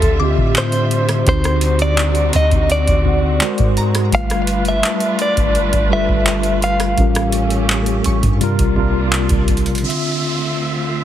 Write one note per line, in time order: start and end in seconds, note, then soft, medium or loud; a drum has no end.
0.00 0.36 D2 loud
0.00 0.19 D3 medium
0.00 1.24 D3 medium
0.00 3.37 G3 medium
0.00 0.20 C4 medium
0.00 1.24 C4 medium
0.00 0.22 F4 medium
0.00 1.24 F4 medium
0.00 0.26 A4 medium
0.00 0.29 E5 medium
0.00 1.24 E5 medium
0.00 kick loud
0.00 closed hi-hat medium
0.19 0.97 D3 medium
0.19 0.98 C4 medium
0.19 0.98 F4 medium
0.19 0.28 D#5 medium
0.19 1.58 D6 medium
0.26 0.60 G4 medium
0.26 1.02 E5 medium
0.38 1.24 A2 loud
0.38 kick loud
0.55 1.28 C5 loud
0.55 clap loud
0.55 closed hi-hat medium
0.72 closed hi-hat medium
0.91 closed hi-hat soft
1.09 cross-stick medium
1.09 closed hi-hat medium
1.26 2.30 D2 loud
1.26 2.30 D3 medium
1.26 3.39 D3 medium
1.26 4.10 C4 medium
1.26 2.30 C4 medium
1.26 3.39 D#4 medium
1.26 2.32 D#4 medium
1.26 4.10 F#4 medium
1.26 2.31 F#4 medium
1.26 1.82 C5 loud
1.26 kick loud
1.26 closed hi-hat medium
1.44 cross-stick loud
1.44 closed hi-hat medium
1.61 closed hi-hat medium
1.79 2.31 D5 loud
1.79 closed hi-hat soft
1.97 clap loud
1.97 closed hi-hat medium
2.15 closed hi-hat soft
2.33 2.51 D2 loud
2.33 2.71 D#5 loud
2.33 closed hi-hat medium
2.51 2.86 D2 loud
2.51 kick medium
2.51 closed hi-hat soft
2.70 3.74 D5 medium
2.70 closed hi-hat medium
2.87 3.39 D2 loud
2.87 kick medium
2.87 closed hi-hat medium
3.04 3.41 D3 medium
3.04 3.41 C4 medium
3.04 3.41 F#4 medium
3.04 kick medium
3.09 3.43 F#5 medium
3.40 3.98 G#3 medium
3.40 4.12 G#3 medium
3.40 3.99 F#4 medium
3.40 3.99 A#4 medium
3.40 clap loud
3.40 closed hi-hat medium
3.44 4.00 C5 medium
3.58 4.11 G#2 loud
3.58 kick loud
3.58 closed hi-hat soft
3.77 4.45 A#5 medium
3.77 closed hi-hat soft
3.95 cross-stick medium
3.95 closed hi-hat medium
4.12 4.81 G1 loud
4.12 5.16 G3 medium
4.12 6.95 G3 medium
4.12 6.96 A3 medium
4.12 5.17 A3 medium
4.12 6.96 D4 medium
4.12 6.96 F4 medium
4.12 6.95 B4 medium
4.12 4.63 F5 loud
4.12 kick loud
4.12 closed hi-hat medium
4.16 5.18 B4 medium
4.30 cross-stick loud
4.30 closed hi-hat medium
4.47 closed hi-hat medium
4.65 5.21 E5 loud
4.65 closed hi-hat medium
4.83 6.84 A5 medium
4.83 clap loud
4.83 closed hi-hat medium
5.00 closed hi-hat soft
5.19 5.88 D5 loud
5.19 closed hi-hat medium
5.37 5.72 G1 loud
5.37 kick medium
5.37 closed hi-hat soft
5.55 closed hi-hat medium
5.73 6.08 G1 loud
5.73 kick medium
5.73 closed hi-hat medium
5.90 6.68 G3 medium
5.90 6.69 F4 medium
5.90 6.69 A4 medium
5.90 6.70 B4 medium
5.90 6.59 E5 loud
6.09 6.95 G1 loud
6.09 kick loud
6.26 clap loud
6.26 closed hi-hat medium
6.43 closed hi-hat soft
6.62 9.45 F5 loud
6.62 closed hi-hat soft
6.80 cross-stick medium
6.80 closed hi-hat medium
6.97 8.01 A1 loud
6.97 8.01 A2 medium
6.97 8.02 G3 medium
6.97 8.39 A3 medium
6.97 8.40 C#4 medium
6.97 8.02 C#4 medium
6.97 8.02 F4 medium
6.97 8.40 G4 medium
6.97 8.03 A#4 medium
6.97 kick loud
6.97 closed hi-hat medium
7.15 cross-stick loud
7.15 closed hi-hat medium
7.32 closed hi-hat medium
7.50 closed hi-hat medium
7.69 clap loud
7.69 closed hi-hat medium
7.86 closed hi-hat soft
8.04 8.23 A1 loud
8.04 8.73 C#6 medium
8.04 closed hi-hat medium
8.23 8.57 G2 loud
8.23 kick loud
8.23 closed hi-hat soft
8.40 8.69 C3 loud
8.40 9.82 C3 medium
8.40 8.70 G3 loud
8.40 9.83 G3 medium
8.40 9.82 A#3 medium
8.40 9.83 D4 medium
8.40 9.82 F4 medium
8.40 8.70 F4 medium
8.40 8.71 A#4 loud
8.40 closed hi-hat medium
8.59 9.28 C2 loud
8.59 kick medium
8.59 closed hi-hat medium
8.75 9.54 C3 medium
8.75 9.54 G3 medium
8.75 9.55 F4 medium
8.75 kick medium
8.79 9.56 A#4 loud
9.12 clap loud
9.12 closed hi-hat medium
9.29 9.69 C2 loud
9.29 kick loud
9.29 closed hi-hat medium
9.48 kick loud
9.48 closed hi-hat medium
9.48 open hi-hat medium
9.57 closed hi-hat medium
9.66 9.84 A#1 loud
9.66 closed hi-hat medium
9.75 closed hi-hat medium
9.78 11.04 D3 medium
9.78 closed hi-hat medium
9.83 11.04 D2 medium
9.83 11.04 D3 medium
9.83 11.04 C4 medium
9.83 11.04 F4 medium
9.83 11.04 E5 medium
9.83 downlifter medium
9.89 11.04 E5 medium
9.89 closed hi-hat medium